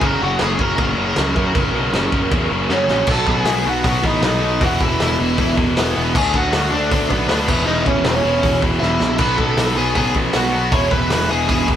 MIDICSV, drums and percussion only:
0, 0, Header, 1, 2, 480
1, 0, Start_track
1, 0, Tempo, 382409
1, 24, Time_signature, 4, 2, 24, 8
1, 14764, End_track
2, 0, Start_track
2, 0, Title_t, "Drums"
2, 16, Note_on_c, 9, 49, 67
2, 18, Note_on_c, 9, 36, 113
2, 141, Note_off_c, 9, 49, 0
2, 144, Note_off_c, 9, 36, 0
2, 489, Note_on_c, 9, 49, 59
2, 490, Note_on_c, 9, 38, 112
2, 614, Note_off_c, 9, 49, 0
2, 616, Note_off_c, 9, 38, 0
2, 740, Note_on_c, 9, 36, 94
2, 866, Note_off_c, 9, 36, 0
2, 979, Note_on_c, 9, 49, 60
2, 982, Note_on_c, 9, 36, 110
2, 1105, Note_off_c, 9, 49, 0
2, 1108, Note_off_c, 9, 36, 0
2, 1458, Note_on_c, 9, 49, 72
2, 1459, Note_on_c, 9, 38, 122
2, 1583, Note_off_c, 9, 49, 0
2, 1585, Note_off_c, 9, 38, 0
2, 1706, Note_on_c, 9, 36, 88
2, 1832, Note_off_c, 9, 36, 0
2, 1943, Note_on_c, 9, 49, 68
2, 1946, Note_on_c, 9, 36, 122
2, 2069, Note_off_c, 9, 49, 0
2, 2071, Note_off_c, 9, 36, 0
2, 2429, Note_on_c, 9, 49, 70
2, 2430, Note_on_c, 9, 38, 106
2, 2554, Note_off_c, 9, 49, 0
2, 2555, Note_off_c, 9, 38, 0
2, 2666, Note_on_c, 9, 36, 90
2, 2792, Note_off_c, 9, 36, 0
2, 2907, Note_on_c, 9, 36, 102
2, 2912, Note_on_c, 9, 49, 60
2, 3032, Note_off_c, 9, 36, 0
2, 3037, Note_off_c, 9, 49, 0
2, 3379, Note_on_c, 9, 38, 70
2, 3505, Note_off_c, 9, 38, 0
2, 3618, Note_on_c, 9, 38, 80
2, 3743, Note_off_c, 9, 38, 0
2, 3850, Note_on_c, 9, 57, 126
2, 3859, Note_on_c, 9, 36, 119
2, 3975, Note_off_c, 9, 57, 0
2, 3985, Note_off_c, 9, 36, 0
2, 4099, Note_on_c, 9, 36, 96
2, 4225, Note_off_c, 9, 36, 0
2, 4335, Note_on_c, 9, 46, 68
2, 4336, Note_on_c, 9, 38, 127
2, 4460, Note_off_c, 9, 46, 0
2, 4462, Note_off_c, 9, 38, 0
2, 4823, Note_on_c, 9, 46, 67
2, 4824, Note_on_c, 9, 36, 110
2, 4949, Note_off_c, 9, 36, 0
2, 4949, Note_off_c, 9, 46, 0
2, 5066, Note_on_c, 9, 36, 92
2, 5191, Note_off_c, 9, 36, 0
2, 5302, Note_on_c, 9, 46, 72
2, 5303, Note_on_c, 9, 38, 127
2, 5428, Note_off_c, 9, 46, 0
2, 5429, Note_off_c, 9, 38, 0
2, 5787, Note_on_c, 9, 36, 118
2, 5791, Note_on_c, 9, 46, 70
2, 5913, Note_off_c, 9, 36, 0
2, 5916, Note_off_c, 9, 46, 0
2, 6033, Note_on_c, 9, 36, 96
2, 6158, Note_off_c, 9, 36, 0
2, 6277, Note_on_c, 9, 46, 63
2, 6278, Note_on_c, 9, 38, 119
2, 6402, Note_off_c, 9, 46, 0
2, 6404, Note_off_c, 9, 38, 0
2, 6749, Note_on_c, 9, 46, 58
2, 6755, Note_on_c, 9, 36, 100
2, 6874, Note_off_c, 9, 46, 0
2, 6880, Note_off_c, 9, 36, 0
2, 6997, Note_on_c, 9, 36, 95
2, 7123, Note_off_c, 9, 36, 0
2, 7239, Note_on_c, 9, 46, 67
2, 7240, Note_on_c, 9, 38, 116
2, 7365, Note_off_c, 9, 46, 0
2, 7366, Note_off_c, 9, 38, 0
2, 7720, Note_on_c, 9, 36, 119
2, 7725, Note_on_c, 9, 49, 114
2, 7845, Note_off_c, 9, 36, 0
2, 7851, Note_off_c, 9, 49, 0
2, 7957, Note_on_c, 9, 36, 98
2, 8082, Note_off_c, 9, 36, 0
2, 8193, Note_on_c, 9, 46, 65
2, 8194, Note_on_c, 9, 38, 120
2, 8319, Note_off_c, 9, 46, 0
2, 8320, Note_off_c, 9, 38, 0
2, 8680, Note_on_c, 9, 36, 110
2, 8681, Note_on_c, 9, 46, 63
2, 8805, Note_off_c, 9, 36, 0
2, 8806, Note_off_c, 9, 46, 0
2, 8917, Note_on_c, 9, 36, 87
2, 9043, Note_off_c, 9, 36, 0
2, 9150, Note_on_c, 9, 46, 73
2, 9151, Note_on_c, 9, 38, 116
2, 9276, Note_off_c, 9, 46, 0
2, 9277, Note_off_c, 9, 38, 0
2, 9393, Note_on_c, 9, 36, 103
2, 9394, Note_on_c, 9, 49, 106
2, 9519, Note_off_c, 9, 36, 0
2, 9519, Note_off_c, 9, 49, 0
2, 9869, Note_on_c, 9, 36, 98
2, 9994, Note_off_c, 9, 36, 0
2, 10098, Note_on_c, 9, 46, 70
2, 10099, Note_on_c, 9, 38, 116
2, 10224, Note_off_c, 9, 46, 0
2, 10225, Note_off_c, 9, 38, 0
2, 10581, Note_on_c, 9, 46, 60
2, 10584, Note_on_c, 9, 36, 99
2, 10707, Note_off_c, 9, 46, 0
2, 10710, Note_off_c, 9, 36, 0
2, 10824, Note_on_c, 9, 36, 86
2, 10950, Note_off_c, 9, 36, 0
2, 11072, Note_on_c, 9, 38, 66
2, 11197, Note_off_c, 9, 38, 0
2, 11302, Note_on_c, 9, 38, 89
2, 11428, Note_off_c, 9, 38, 0
2, 11526, Note_on_c, 9, 57, 109
2, 11535, Note_on_c, 9, 36, 115
2, 11652, Note_off_c, 9, 57, 0
2, 11661, Note_off_c, 9, 36, 0
2, 11775, Note_on_c, 9, 36, 95
2, 11901, Note_off_c, 9, 36, 0
2, 12016, Note_on_c, 9, 46, 68
2, 12017, Note_on_c, 9, 38, 111
2, 12141, Note_off_c, 9, 46, 0
2, 12142, Note_off_c, 9, 38, 0
2, 12494, Note_on_c, 9, 36, 110
2, 12497, Note_on_c, 9, 46, 56
2, 12619, Note_off_c, 9, 36, 0
2, 12622, Note_off_c, 9, 46, 0
2, 12735, Note_on_c, 9, 36, 90
2, 12861, Note_off_c, 9, 36, 0
2, 12969, Note_on_c, 9, 46, 64
2, 12970, Note_on_c, 9, 38, 127
2, 13094, Note_off_c, 9, 46, 0
2, 13095, Note_off_c, 9, 38, 0
2, 13452, Note_on_c, 9, 46, 74
2, 13457, Note_on_c, 9, 36, 116
2, 13578, Note_off_c, 9, 46, 0
2, 13582, Note_off_c, 9, 36, 0
2, 13697, Note_on_c, 9, 36, 99
2, 13822, Note_off_c, 9, 36, 0
2, 13936, Note_on_c, 9, 46, 69
2, 13937, Note_on_c, 9, 38, 122
2, 14061, Note_off_c, 9, 46, 0
2, 14063, Note_off_c, 9, 38, 0
2, 14421, Note_on_c, 9, 46, 66
2, 14423, Note_on_c, 9, 36, 107
2, 14547, Note_off_c, 9, 46, 0
2, 14548, Note_off_c, 9, 36, 0
2, 14663, Note_on_c, 9, 36, 89
2, 14764, Note_off_c, 9, 36, 0
2, 14764, End_track
0, 0, End_of_file